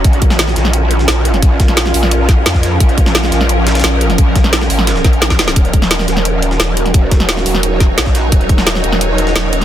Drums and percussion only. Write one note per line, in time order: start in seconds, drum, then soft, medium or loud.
0.04 kick loud
0.04 closed hi-hat medium
0.13 closed hi-hat soft
0.22 kick loud
0.22 closed hi-hat medium
0.30 snare medium
0.30 snare soft
0.39 snare loud
0.39 closed hi-hat medium
0.48 snare soft
0.56 snare soft
0.56 closed hi-hat medium
0.65 snare soft
0.73 closed hi-hat medium
0.91 closed hi-hat medium
0.99 snare soft
1.08 snare loud
1.08 closed hi-hat medium
1.25 closed hi-hat medium
1.34 snare soft
1.34 closed hi-hat soft
1.42 kick loud
1.42 closed hi-hat medium
1.42 closed hi-hat loud
1.60 kick loud
1.60 snare medium
1.60 closed hi-hat medium
1.68 snare soft
1.68 closed hi-hat soft
1.77 snare loud
1.77 closed hi-hat medium
1.86 snare medium
1.86 snare soft
1.94 closed hi-hat medium
1.94 open hi-hat medium
2.03 snare soft
2.11 closed hi-hat medium
2.11 closed hi-hat loud
2.29 kick loud
2.29 snare soft
2.29 closed hi-hat medium
2.46 snare loud
2.46 closed hi-hat medium
2.55 kick medium
2.55 snare medium
2.63 snare soft
2.63 closed hi-hat medium
2.80 kick loud
2.80 closed hi-hat medium
2.80 closed hi-hat loud
2.89 closed hi-hat soft
2.98 kick loud
2.98 closed hi-hat medium
3.06 snare medium
3.06 snare soft
3.15 snare loud
3.15 closed hi-hat medium
3.23 snare soft
3.32 snare soft
3.32 closed hi-hat medium
3.41 snare soft
3.49 closed hi-hat loud
3.49 closed hi-hat medium
3.67 snare loud
3.67 closed hi-hat medium
3.75 snare medium
3.75 closed hi-hat medium
3.80 snare medium
3.80 closed hi-hat medium
3.84 snare loud
3.84 closed hi-hat medium
4.01 closed hi-hat medium
4.10 snare soft
4.10 closed hi-hat soft
4.18 kick loud
4.18 closed hi-hat loud
4.18 closed hi-hat medium
4.36 kick loud
4.36 snare medium
4.36 closed hi-hat medium
4.44 snare soft
4.44 closed hi-hat soft
4.53 snare loud
4.53 closed hi-hat medium
4.61 snare medium
4.61 snare soft
4.70 closed hi-hat medium
4.70 open hi-hat medium
4.79 snare soft
4.87 snare loud
4.87 closed hi-hat medium
4.87 closed hi-hat loud
4.96 snare soft
5.04 kick loud
5.04 snare soft
5.04 closed hi-hat medium
5.13 closed hi-hat soft
5.22 snare loud
5.22 closed hi-hat medium
5.22 closed hi-hat loud
5.30 kick medium
5.30 snare medium
5.39 snare loud
5.39 snare medium
5.39 closed hi-hat medium
5.48 snare soft
5.48 snare medium
5.56 kick loud
5.56 closed hi-hat medium
5.56 closed hi-hat loud
5.65 closed hi-hat soft
5.73 kick loud
5.73 closed hi-hat medium
5.82 snare medium
5.91 snare loud
5.91 closed hi-hat medium
5.99 snare soft
6.08 snare soft
6.08 closed hi-hat medium
6.17 snare medium
6.25 closed hi-hat medium
6.25 closed hi-hat loud
6.42 closed hi-hat medium
6.51 snare soft
6.60 snare loud
6.60 closed hi-hat loud
6.60 closed hi-hat medium
6.77 closed hi-hat medium
6.86 snare soft
6.86 closed hi-hat soft
6.94 kick loud
6.94 closed hi-hat medium
6.94 closed hi-hat loud
7.11 kick loud
7.11 snare medium
7.11 closed hi-hat medium
7.20 snare medium
7.20 closed hi-hat soft
7.29 snare loud
7.29 closed hi-hat medium
7.37 snare medium
7.37 snare soft
7.46 closed hi-hat medium
7.46 open hi-hat medium
7.55 snare soft
7.63 closed hi-hat loud
7.63 closed hi-hat medium
7.80 kick loud
7.80 snare soft
7.80 closed hi-hat medium
7.98 snare loud
7.98 closed hi-hat loud
7.98 closed hi-hat medium
8.06 kick medium
8.06 snare soft
8.15 snare soft
8.15 closed hi-hat medium
8.32 kick loud
8.32 closed hi-hat medium
8.41 closed hi-hat soft
8.49 kick loud
8.49 closed hi-hat medium
8.58 snare medium
8.58 snare soft
8.67 snare loud
8.67 closed hi-hat medium
8.75 snare soft
8.84 closed hi-hat medium
8.92 snare soft
9.01 closed hi-hat medium
9.18 closed hi-hat medium
9.27 snare soft
9.36 snare loud
9.36 closed hi-hat medium
9.53 closed hi-hat medium
9.61 snare soft
9.61 closed hi-hat soft